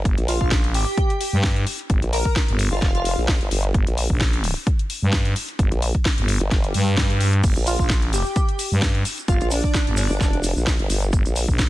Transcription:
0.05 fm bass G1, kick, closed hi-hat
0.18 wobble bass A#1, closed hi-hat
0.28 digital synth lead F4, open hi-hat
0.41 fm bass A#1, digital synth lead F4, kick
0.51 kick, snare, closed hi-hat
0.64 closed hi-hat
0.74 digital synth lead G4, open hi-hat
0.97 kick, closed hi-hat
1.10 closed hi-hat
1.21 digital synth lead G4, open hi-hat
1.33 fm bass G2, digital synth lead G4
1.43 kick, snare, closed hi-hat
1.56 closed hi-hat
1.67 open hi-hat
1.79 closed hi-hat
1.90 fm bass G1, kick, closed hi-hat
2.02 wobble bass A#1, closed hi-hat
2.13 digital synth lead A#4, open hi-hat
2.25 digital synth lead A#4, kick
2.36 kick, snare, closed hi-hat
2.48 fm bass G1, closed hi-hat
2.59 open hi-hat
2.72 wobble bass G1, digital synth lead F4
2.82 wobble bass F1, digital synth lead F4, kick, snare, closed hi-hat
2.95 digital synth lead F4, closed hi-hat
3.05 digital synth lead F4, open hi-hat
3.18 wobble bass A#1
3.28 kick, snare, open hi-hat
3.41 wobble bass G1, closed hi-hat
3.51 wobble bass G1, open hi-hat
3.64 closed hi-hat
3.74 fm bass G1, kick, closed hi-hat
3.87 wobble bass A#1, closed hi-hat
3.98 open hi-hat
4.10 fm bass A#1, kick
4.21 kick, snare, closed hi-hat
4.33 closed hi-hat
4.44 open hi-hat
4.67 kick, closed hi-hat
4.79 closed hi-hat
4.90 open hi-hat
5.02 fm bass G2
5.13 kick, snare, closed hi-hat
5.25 closed hi-hat
5.36 open hi-hat
5.49 closed hi-hat
5.59 fm bass G1, kick, closed hi-hat
5.72 wobble bass A#1, closed hi-hat
5.82 open hi-hat
5.95 kick, closed hi-hat
6.05 kick, snare, closed hi-hat
6.18 fm bass G1, closed hi-hat
6.28 open hi-hat
6.41 wobble bass G1, closed hi-hat
6.51 wobble bass G1, kick, snare, closed hi-hat, swell
6.64 closed hi-hat
6.74 fm bass G2, open hi-hat
6.97 fm bass G2, kick, snare, open hi-hat
7.10 closed hi-hat
7.20 open hi-hat
7.33 closed hi-hat
7.44 fm bass G1, kick, closed hi-hat, crash, shaker
7.56 wobble bass A#1, closed hi-hat, shaker
7.67 digital synth lead F4, open hi-hat, shaker
7.79 fm bass A#1, digital synth lead F4, kick, shaker
7.90 kick, snare, closed hi-hat, shaker
8.02 closed hi-hat
8.13 digital synth lead G4, open hi-hat, shaker
8.26 shaker
8.36 kick, closed hi-hat, shaker
8.49 closed hi-hat
8.59 open hi-hat, shaker
8.72 fm bass G2, shaker
8.82 kick, snare, closed hi-hat, shaker
8.95 closed hi-hat
9.05 open hi-hat, shaker
9.18 closed hi-hat, shaker
9.28 fm bass G1, digital synth lead F4, kick, closed hi-hat, shaker
9.41 wobble bass A#1, digital synth lead F4, closed hi-hat, shaker
9.51 digital synth lead D4, open hi-hat, shaker
9.64 kick, shaker
9.74 kick, snare, closed hi-hat, shaker
9.87 fm bass G1, closed hi-hat
9.97 digital synth lead D4, open hi-hat, shaker
10.10 wobble bass G1, shaker
10.21 wobble bass F1, kick, snare, closed hi-hat, shaker
10.33 closed hi-hat
10.43 open hi-hat, shaker
10.56 wobble bass A#1, shaker
10.67 kick, snare, open hi-hat, shaker
10.79 wobble bass G1, closed hi-hat
10.90 wobble bass G1, open hi-hat, shaker
11.02 closed hi-hat, shaker
11.13 fm bass G1, kick, closed hi-hat, shaker
11.26 wobble bass A#1, closed hi-hat, shaker
11.36 open hi-hat, shaker
11.48 fm bass A#1, kick, shaker
11.59 kick, snare, closed hi-hat, shaker

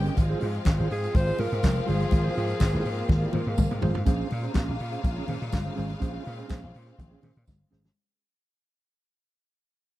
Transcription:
Already playing: string section G#3 A#3 C#4 G4 G5, clean electric guitar C#4
0.05 muted clean electric guitar stroke, closed hi-hat
0.17 slap bass G#1, string section F3 C4 F4 F5, muted clean electric guitar stroke, kick, closed hi-hat, muted conga
0.29 clean electric guitar F4 G#4 C5
0.41 slap bass G#2, clean electric guitar F4 G#4 C5, open hi-hat
0.54 closed hi-hat
0.65 slap bass G#1, muted clean electric guitar stroke, kick, snare, clap, closed hi-hat, tambourine, high conga
0.79 slap bass G#1, clean electric guitar F4 G#4 C5
0.90 slap bass G#2, alto saxophone G#4, muted clean electric guitar stroke, open hi-hat
1.03 muted clean electric guitar stroke, closed hi-hat
1.15 slap bass G#1, alto saxophone C5, muted clean electric guitar stroke, kick, closed hi-hat, muted conga
1.27 clean electric guitar F4 G#4 D#5
1.38 slap bass G#2, clean electric guitar F4 G#4 C5, alto saxophone A#4, open hi-hat, muted conga
1.52 slap bass G#2, closed hi-hat
1.63 slap bass F1, muted clean electric guitar stroke, kick, snare, clap, closed hi-hat, tambourine, high conga
1.76 muted clean electric guitar stroke
1.86 slap bass G1, clean electric guitar F4 G#4 C5, alto saxophone G#4, open hi-hat, high conga
2.00 muted clean electric guitar stroke, closed hi-hat
2.11 slap bass G#1, string section A#3, muted clean electric guitar stroke, kick, closed hi-hat, muted conga
2.24 clean electric guitar F4 G#4 C5
2.35 slap bass G#2, clean electric guitar F4 G#4 C5, open hi-hat
2.49 muted clean electric guitar stroke, closed hi-hat
2.60 slap bass G#1, muted clean electric guitar stroke, kick, snare, clap, closed hi-hat, tambourine, high conga
2.72 slap bass G#1, clean electric guitar F4 G#4 C5
2.84 slap bass G#2, muted clean electric guitar stroke, open hi-hat
2.97 muted clean electric guitar stroke, closed hi-hat
3.09 slap bass G#1, muted clean electric guitar stroke, kick, snare, muted conga, low conga
3.21 clean electric guitar F4 G#4 D#5
3.32 slap bass G#2, clean electric guitar F4 G#4 C5, high tom, muted conga, low conga
3.47 slap bass G#2, muted clean electric guitar stroke
3.57 slap bass G#1, muted clean electric guitar stroke, kick, mid tom, tambourine, high conga
3.71 slap bass G#2, muted clean electric guitar stroke, mid tom
3.81 slap bass G#1, clean electric guitar F4 G#4 C5, floor tom, high conga
3.95 slap bass G#2, muted clean electric guitar stroke, floor tom
4.05 slap bass A#1, string section C#3 G#3 A#3 F4 F5, clean electric guitar C#4 G#4 C5, kick, closed hi-hat, muted conga
4.30 slap bass A#2, muted clean electric guitar stroke, open hi-hat, muted conga
4.43 clean electric guitar C#4 G#4 C5, closed hi-hat
4.54 slap bass A#1, clean electric guitar C#4 G#4 C5, kick, snare, clap, closed hi-hat, tambourine, high conga
4.67 slap bass A#1, muted clean electric guitar stroke
4.78 slap bass A#2, muted clean electric guitar stroke, open hi-hat
4.91 clean electric guitar C#4 G#4 C5, closed hi-hat
5.03 slap bass A#1, muted clean electric guitar stroke, kick, closed hi-hat, muted conga
5.16 clean electric guitar C#4 G#4 C#5
5.27 slap bass A#2, clean electric guitar C#4 G#4 C5, open hi-hat, muted conga, low conga
5.40 slap bass A#2, muted clean electric guitar stroke, closed hi-hat
5.52 slap bass G1, muted clean electric guitar stroke, kick, snare, clap, closed hi-hat, tambourine, high conga
5.65 clean electric guitar C#4 G#4 C5
5.76 slap bass G#1, clean electric guitar C#4 G#4 C5, open hi-hat, high conga
5.89 muted clean electric guitar stroke, closed hi-hat, high conga
6.00 slap bass A#1, string section C4, clean electric guitar C#4 G#4 C5, kick, closed hi-hat, muted conga
6.25 slap bass A#2, muted clean electric guitar stroke, open hi-hat
6.37 clean electric guitar C#4 G#4 C5, closed hi-hat
6.48 slap bass A#1, clean electric guitar C#4 G#4 C5, kick, snare, clap, closed hi-hat, tambourine, high conga
6.62 slap bass A#1, muted clean electric guitar stroke
6.73 slap bass A#2, muted clean electric guitar stroke, open hi-hat
6.86 clean electric guitar C#4 G#4 C5, closed hi-hat
6.98 slap bass A#1, muted clean electric guitar stroke, kick, closed hi-hat, muted conga, low conga
7.10 clean electric guitar C#4 G#4 C#5
7.22 slap bass A#2, clean electric guitar C#4 G#4 C5, open hi-hat, muted conga, low conga
7.37 slap bass A#2, closed hi-hat
7.48 slap bass G1, kick, snare, tambourine, high conga
7.60 muted clean electric guitar stroke
7.71 slap bass G#1, clean electric guitar C#4 G#4 C5, snare, high conga
7.84 muted clean electric guitar stroke, snare, high conga

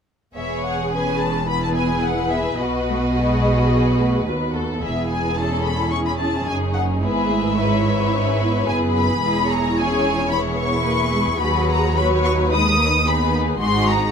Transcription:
0.35 double bass section E1, cello section E2, viola section B3 G#4, violin section G#4 C#5 E5
0.64 violin section F#5
0.92 viola section C#4, violin section B4 G#5
1.21 violin section A5
1.49 viola section B3 E4, violin section G#4 B4 B5
1.64 violin section A5
1.76 violin section G#5
2.04 violin section F#5
2.31 violin section E5
2.60 double bass section B1, cello section B2, viola section B3 F#4, violin section F#4 D#5
2.89 viola section A3
3.16 viola section G#3 G#4, violin section B4
3.72 viola section F#3
3.99 viola section A3
4.26 cello section D#2, double bass section D#2, viola section B3 F#4, violin section B4
4.54 violin section A4
4.81 double bass section E1, cello section E2, viola section B3 E4, violin section G#4 E5
5.10 violin section G#5
5.37 viola section C#4, violin section A4 A5
5.65 violin section B5
5.92 viola section C#4, violin section G#4 C#6
6.07 violin section B5
6.20 violin section A5
6.47 double bass section F#1, cello section F#2, viola section D#4, violin section G#5
6.76 violin section F#5
7.02 double bass section G#1, cello section G#2, viola section B3 E4, violin section G#4 B4 E5
7.30 viola section A3
7.57 viola section G#3 E4, violin section B4 C#5
7.85 violin section B4
8.12 viola section C#4
8.39 viola section B3
8.66 double bass section F#1, cello section F#2, viola section B3, violin section G#4 B4 G#5
8.96 violin section B5
9.21 double bass section E1, cello section E2, viola section G#3 E4, violin section G#4 B4
9.49 violin section C#5 A#5
9.76 viola section C#4, violin section G#4 G#5
10.30 viola section B3 G#4, violin section E4 B5
10.58 violin section C#6
10.84 viola section A#3 G#4, violin section B4
11.13 viola section G#3
11.40 double bass section D#2, cello section D#2, viola section F#3, violin section F#4 B4 B5
11.69 violin section A#5
11.96 viola section F#3 F#4, violin section B4 C#5 B5
12.24 violin section C#6
12.51 viola section G#3 D#4, violin section B4 D#6
12.78 viola section A#3
13.05 viola section B3 D#4, violin section G#4 B4 B5
13.61 double bass section G#1, cello section G#2, viola section G#3 D#4, violin section F#4 G#4 C6
13.88 violin section A#5

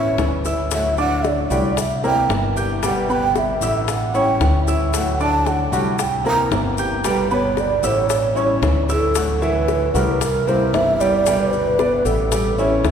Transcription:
Already playing: upright bass A1, nylon-string guitar G3 C#4 E4, grand piano C#4 C#5 C#6, shakuhachi E5
0.18 upright bass D2, nylon-string guitar E3 G3 C#4 E4, high bongo, low bongo, maracas
0.45 grand piano E4 E5 E6, high bongo, maracas
0.71 nylon-string guitar D3 F#3 A3 E4 F#4, shakuhachi E5, high bongo, maracas
0.97 grand piano D4 D5 D6, shakuhachi F#5, high bongo, maracas
1.24 shakuhachi D5, high bongo, maracas
1.50 upright bass C2, nylon-string guitar F#3 A3 E4 F#4, grand piano G3 G4 G5, maracas
1.77 shakuhachi E5, muted nylon-string guitar stroke, high bongo, maracas
2.04 nylon-string guitar E3 A#3 C4 E4, grand piano A#3 A#4 A#5, shakuhachi G5, high bongo, maracas
2.29 upright bass G1, nylon-string guitar E3 A#3 C4 E4, high bongo, low bongo, maracas
2.56 grand piano G4 G5 G6, high bongo, maracas
2.82 nylon-string guitar B2 D3 G3 B3 G4, grand piano G3 G4 G5, shakuhachi F#5, high bongo, maracas
3.09 grand piano B3 B4 B5, shakuhachi G5, high bongo, maracas
3.36 shakuhachi E5, high bongo, maracas
3.61 upright bass A1, nylon-string guitar D3 G3 B3 G4, grand piano E4 E5 E6, maracas
3.88 shakuhachi F#5, muted nylon-string guitar stroke, high bongo, maracas
4.14 nylon-string guitar G3 C#4 E4, grand piano C#4 C#5 C#6, shakuhachi G5, maracas
4.40 upright bass D2, nylon-string guitar E3 G3 C#4 E4, high bongo, low bongo, maracas
4.67 grand piano E4 E5 E6, high bongo, maracas
4.93 nylon-string guitar D3 F#3 A3 E4 F#4, shakuhachi F#5, high bongo, maracas
5.20 grand piano D4 D5 D6, shakuhachi A5, high bongo, maracas
5.46 shakuhachi F#5, high bongo, maracas
5.72 upright bass C2, nylon-string guitar F#3 A3 E4 F#4, grand piano G3 G4 G5, maracas
5.99 shakuhachi G5, muted nylon-string guitar stroke, high bongo, maracas
6.24 nylon-string guitar E3 A#3 C4 E4, grand piano A#3 A#4 A#5, shakuhachi A#5, high bongo, maracas
6.51 upright bass G1, nylon-string guitar E3 A#3 C4 E4, high bongo, low bongo, maracas
6.78 grand piano G4 G5 G6, high bongo, maracas
7.04 nylon-string guitar B2 D3 G3 B3 G4, grand piano G3 G4 G5, shakuhachi B4, high bongo, maracas
7.31 grand piano B3 B4 B5, shakuhachi C#5, high bongo, maracas
7.57 shakuhachi D5, high bongo, maracas
7.83 upright bass A1, nylon-string guitar D3 G3 B3 G4, grand piano E4 E5 E6, shakuhachi C#5, maracas
8.10 muted nylon-string guitar stroke, high bongo, maracas
8.35 nylon-string guitar G3 C#4 E4, grand piano C#4 C#5 C#6, maracas
8.62 upright bass D2, nylon-string guitar E3 G3 C#4 E4, high bongo, low bongo, maracas
8.89 grand piano E4 E5 E6, shakuhachi A4, high bongo, maracas
9.15 nylon-string guitar D3 F#3 A3 E4 F#4, high bongo, maracas
9.42 grand piano E3 E4 E5, shakuhachi B4, high bongo, maracas
9.68 high bongo, maracas
9.94 upright bass C2, nylon-string guitar F#3 A3 E4 F#4, grand piano G3 G4 A#4, maracas
10.21 shakuhachi A#4, muted nylon-string guitar stroke, high bongo, maracas
10.47 nylon-string guitar E3 A#3 C4 E4, grand piano G3 G4 A#4, shakuhachi C5, high bongo, maracas
10.73 upright bass G1, nylon-string guitar E3 A#3 C4 E4, shakuhachi E5, high bongo, low bongo, maracas
11.00 grand piano G3 G4 G5, shakuhachi D5, high bongo, maracas
11.26 nylon-string guitar B2 D3 G3 B3 G4, grand piano G3 G4 G5, high bongo, maracas
11.53 shakuhachi B4, high bongo, maracas
11.79 grand piano B3 B4 D5, high bongo, maracas
12.05 upright bass A1, nylon-string guitar D3 G3 B3 G4, shakuhachi A4, maracas
12.32 grand piano G3 G4 G5, muted nylon-string guitar stroke, high bongo, maracas
12.58 nylon-string guitar G3 C#4 E4, grand piano C#4 C#5 E5, maracas
12.84 upright bass D2, nylon-string guitar E3 G3 C#4 E4, high bongo, low bongo, maracas

